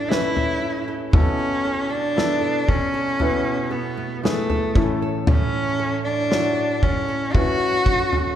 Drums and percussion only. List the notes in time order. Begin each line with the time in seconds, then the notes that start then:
0.12 snare
0.37 floor tom
1.13 kick, floor tom
2.18 snare
2.69 kick, floor tom
3.20 floor tom
4.25 snare
4.50 floor tom
4.75 kick
5.27 floor tom
6.32 snare
6.83 kick, floor tom
7.35 kick, floor tom
7.86 kick
8.13 floor tom